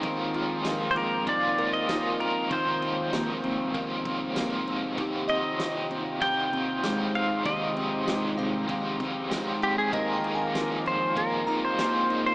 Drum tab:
RD |xxxxxxxx|xxxxxxxx|xxxxxxxx|xxxxxxxx|
TB |--x---x-|--x---x-|--x---x-|--x---x-|
SD |--o---o-|--o---o-|--o---o-|--o---o-|
BD |o---o---|o---oo--|o---o---|o---oo--|

RD |xxxxxxxx|
TB |--x---x-|
SD |--o---o-|
BD |o---o---|